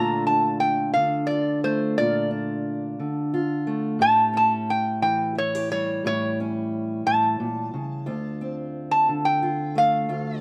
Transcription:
Already playing: A#2 D3 A3 D4 F4 A#5
0.27 D4 A5
0.60 G5
0.94 D3 F5
1.27 F4 D5
1.64 A3 C5
1.98 A#2 F4 D5
2.31 D4
2.99 D3
3.34 F4
3.67 A3
3.99 A2 G4 A5
4.33 C#4 A5
4.70 G5
5.02 E3 G5
5.35 E4 C#5
5.55 G4
5.71 G3 C#5
6.04 A2 G4 C#5
6.40 C#4
7.06 A2 A5
7.40 A#2
7.74 C#3
8.06 D2 F4
8.41 C4
8.91 A5
9.09 D3
9.25 G5
9.42 F4
9.75 A3 F5
10.09 D2 F4

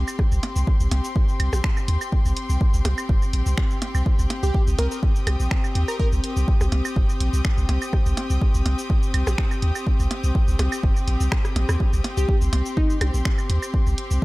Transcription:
Already playing: C4 G4 G5 C6
0.08 cabasa, claves
0.19 kick, percussion blips
0.32 C2, cabasa
0.43 closed hi-hat, percussion blips
0.56 C2, cabasa
0.67 kick
0.80 C2, cabasa
0.91 C2, closed hi-hat, percussion blips
1.04 cabasa
1.16 kick
1.29 cabasa
1.40 C2, closed hi-hat, claves
1.53 A#1, percussion blips, cabasa
1.64 finger snap, kick
1.77 cabasa, claves
1.88 D#2, closed hi-hat
2.01 cabasa, claves
2.12 kick
2.25 C2, cabasa
2.37 closed hi-hat
2.50 C2, cabasa
2.61 kick
2.74 C2, cabasa
2.85 C2, closed hi-hat, percussion blips
2.98 cabasa, claves
3.09 G1, kick
3.22 cabasa
3.33 A#1, closed hi-hat
3.46 C2, cabasa
3.58 finger snap, kick
3.71 cabasa
3.82 closed hi-hat, percussion blips
3.95 C2, cabasa, claves
4.06 kick
4.19 C2, cabasa
4.30 closed hi-hat, percussion blips
4.43 C2 G4, cabasa
4.54 kick
4.67 C2 D#6, cabasa
4.79 C2 A#4, closed hi-hat, percussion blips
4.92 A#4, cabasa
5.03 kick
5.16 cabasa
5.27 C2, closed hi-hat, percussion blips, claves
5.40 A#1, cabasa
5.51 finger snap, kick
5.64 cabasa, claves
5.75 D#2, closed hi-hat
5.88 A#4, cabasa, claves
6.00 A#4, kick
6.12 C2, cabasa
6.24 closed hi-hat
6.37 C2, cabasa
6.48 kick
6.61 C2, percussion blips, cabasa
6.72 C2, closed hi-hat, percussion blips
6.85 cabasa, claves
6.96 G1, kick
7.09 cabasa
7.20 A#1, closed hi-hat
7.33 C2, cabasa
7.45 finger snap, kick
7.58 C2, cabasa
7.69 C2, closed hi-hat, percussion blips
7.82 cabasa, claves
7.93 kick, percussion blips
8.06 C2, cabasa
8.17 closed hi-hat, percussion blips
8.30 C2, cabasa
8.41 kick
8.54 C2, cabasa
8.66 C2, closed hi-hat, percussion blips
8.79 cabasa
8.90 kick
9.03 cabasa
9.14 C2, closed hi-hat, claves
9.27 A#1, percussion blips, cabasa
9.38 finger snap, kick
9.51 cabasa, claves
9.62 D#2, closed hi-hat
9.75 cabasa, claves
9.87 kick
10.00 C2, cabasa
10.11 closed hi-hat, percussion blips
10.24 C2, cabasa
10.35 kick
10.48 C2, cabasa
10.59 C2, closed hi-hat, percussion blips
10.72 cabasa, claves
10.83 G1, kick
10.96 cabasa
11.07 A#1, closed hi-hat
11.20 C2, cabasa
11.32 finger snap, kick, cross-stick
11.45 cross-stick, cabasa
11.56 A#1, closed hi-hat, percussion blips
11.69 D#2, cross-stick, cabasa, claves
11.80 kick
11.93 C2, cabasa
12.04 closed hi-hat, percussion blips
12.17 C2 G4, cabasa
12.29 kick
12.41 C2 C6, cabasa
12.53 C2, closed hi-hat, percussion blips
12.66 cabasa
12.77 D#4, kick
12.90 cabasa
13.01 C2, closed hi-hat, percussion blips, claves
13.14 A#1, cabasa
13.25 finger snap, kick
13.38 cabasa, claves
13.50 D#2, closed hi-hat
13.62 cabasa, claves
13.74 kick
13.87 C2, cabasa
13.98 closed hi-hat
14.11 C2, cabasa

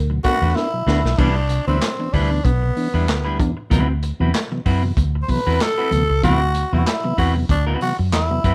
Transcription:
Already playing: D2
0.10 B2 F#3, muted clean electric guitar stroke
0.24 A3 B3 D4 F#4 B4, kick, closed hi-hat, cowbell
0.42 E2 A3 D4 F#4 B4
0.54 B3 D4 E4, muted clean electric guitar stroke, snare, cowbell
0.73 B2 F#3
0.86 D2 A3 B3 D4 F#4 B4, snare
1.04 B1, muted clean electric guitar stroke, snare
1.18 C2 E3 G3 B3 D4 E4 B4, kick, crash
1.36 muted clean electric guitar stroke
1.49 C3, muted clean electric guitar stroke, closed hi-hat
1.67 D2 E3 G3 B3 C4 D4 E4 B4
1.82 muted clean electric guitar stroke, snare, clap, closed hi-hat
1.99 E3 B3 D4, muted clean electric guitar stroke
2.13 D2 C3 G3 D4 E4 B4, kick, open hi-hat
2.31 E3 B3 D4, muted clean electric guitar stroke
2.45 B1 B3 D4, muted clean electric guitar stroke, kick, closed hi-hat
2.62 C3, muted clean electric guitar stroke
2.76 E3 B3 D4, open hi-hat
2.94 E2 G3 D4 E4 B4
3.08 D2, snare, clap, closed hi-hat
3.24 G3 D4 E4 B4
3.39 E2 E3 B3 D4, muted clean electric guitar stroke, kick, closed hi-hat
3.57 muted clean electric guitar stroke
3.70 D2 C3 E3 F#3 B3 C4 E4 F#4 B4, kick, closed hi-hat
3.89 muted clean electric guitar stroke
4.03 muted clean electric guitar stroke, closed hi-hat
4.20 E2 C3 E3 F#3 B3 C4 E4 F#4 B4
4.34 muted clean electric guitar stroke, snare, clap, closed hi-hat
4.51 C3 E3 F#3 B3, muted clean electric guitar stroke
4.66 F#2 C4 E4 F#4 B4, kick, open hi-hat
4.83 C3 E3 F#3 B3, muted clean electric guitar stroke
4.97 D2 F#3 B3, muted clean electric guitar stroke, kick, closed hi-hat
5.15 muted clean electric guitar stroke
5.23 C5
5.28 C3 E3 F#3 B3 B4, kick, open hi-hat
5.46 E2 C4 E4 F#4 B4
5.60 A4, muted clean electric guitar stroke, snare, clap, closed hi-hat
5.78 C4 E4 F#4 B4
5.91 D2 C3 E3 F#3 B3, closed hi-hat
6.10 C#2, muted clean electric guitar stroke
6.23 D2 C3 E3 F#3 B3 C4 E4 F#4 B4, kick, closed hi-hat
6.41 muted clean electric guitar stroke
6.55 muted clean electric guitar stroke, closed hi-hat
6.72 E2 C3 E3 F#3 B3 C4 E4 F#4 B4
6.79 F#4
6.86 E4, muted clean electric guitar stroke, snare, clap, closed hi-hat
7.04 C3 E3 F#3 B3, muted clean electric guitar stroke
7.18 E2 C4 E4 F#4 B4, kick, open hi-hat
7.35 C3 E3 F#3 B3, muted clean electric guitar stroke
7.49 D2 F#3 B3 D4, muted clean electric guitar stroke, kick, closed hi-hat
7.67 C4 E4 F#4 B4
7.81 C3 E3 F#3 B3 F#4, muted clean electric guitar stroke, open hi-hat
7.99 F#2, muted clean electric guitar stroke
8.13 E2 E4, muted clean electric guitar stroke, snare, clap, closed hi-hat
8.30 C3 E3 F#3 B3, muted clean electric guitar stroke
8.44 F#2 C4 E4 F#4 B4, kick, closed hi-hat

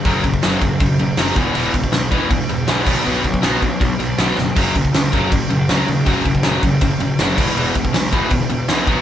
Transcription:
0.05 F#1 F#2 C#3 F#3, kick, crash
0.24 F#1 F#2 C#3, kick, crash
0.34 kick
0.43 F#1 F#2 C#3 F#3, snare, crash
0.61 F#1 F#2 C#3, kick, crash
0.80 F#1 F#2 C#3, kick, crash
0.99 F#1 F#2 C#3, crash
1.17 F#1 F#2 C#3 F#3, snare, crash
1.36 E1 E2 B2 E3, kick, crash
1.54 E1 E2 B2 E3, crash
1.73 E1 E2 B2, kick, crash
1.84 kick
1.92 B1 E2 B2, snare, crash
2.11 E1 E2 B2 E3, kick, crash
2.30 E1 E2 B2, kick, crash
2.49 E1 E2 B2, crash
2.67 B1 E2 B2 E3, snare, crash
2.86 B1 B2 F#3 B3, kick, crash
3.04 B1 B2 F#3 B3, crash
3.23 B1 B2 F#3, kick, crash
3.34 kick
3.42 B1 B2 F#3 B3, snare, crash
3.61 B1 B2 F#3, kick, crash
3.80 B1 B2 F#3, kick, crash
3.99 B1 B2 F#3, crash
4.18 B1 B2 F#3 B3, snare, crash
4.38 F#1 B2 F#3, snare
4.56 F#1 F#2 C#3 F#3, kick, crash
4.75 F#1 F#2 C#3, kick, crash
4.85 kick
4.94 C#2 F#2 C#3, snare, crash
5.12 F#1 F#2 C#3 F#3, kick, crash
5.30 F#1 F#2 C#3, kick, crash
5.50 F#1 F#2 C#3, crash
5.69 C#2 F#2 C#3 F#3, snare, crash
5.87 D#2 F#2 C#3, crash
6.05 F#1 F#2 C#3 F#3, kick, crash
6.24 F#1 F#2 C#3, kick, crash
6.35 kick
6.43 F#1 F#2 C#3 F#3, snare, crash
6.62 F#1 F#2 C#3, kick, crash
6.81 F#1 F#2 C#3, kick, crash
7.00 F#1 F#2 C#3, crash
7.19 F#1 F#2 C#3 F#3, snare, crash
7.37 E1 E2 B2 E3, kick, crash
7.56 E1 E2 B2 E3, crash
7.74 E1 E2 B2, kick, crash
7.85 kick
7.93 B1 E2 B2, snare, crash
8.11 E1 E2 B2 E3, kick, crash
8.30 E1 E2 B2, kick, crash
8.49 E1 E2 B2, crash
8.68 B1 E2 B2 E3, snare, crash
8.87 B1 B2 F#3 B3, kick, crash

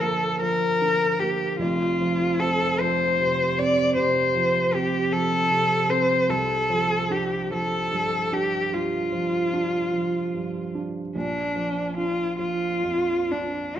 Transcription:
Already playing: D3 F3 A#3
0.01 A#3 A4
0.41 F3 A#4
0.82 D3
1.19 A#3 G4
1.59 F1 F2 F4
2.01 F3
2.39 C4 A4
2.80 F3 C5
3.20 C3
3.59 C4 D5
3.96 C3 C5
4.35 F3
4.73 C4 G4
5.12 F3 A4
5.50 C3
5.89 C4 C5
6.29 C2 A4
6.70 F3
7.10 D4 G4
7.51 F3 A4
7.92 G2
8.32 D4 G4
8.72 G2 F4
9.13 F3
9.53 D4
9.93 F3
10.34 G2
10.75 D4
11.16 A#1 D4
11.56 F3
11.97 D4 F4
12.39 F3 F4
12.84 F2
13.31 D4

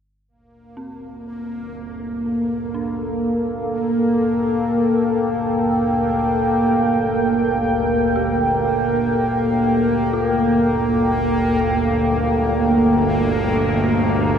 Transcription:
0.27 G1 D2 A#3
0.77 C4
1.70 A4
2.74 D4
3.52 G5
8.16 G4
10.13 F4

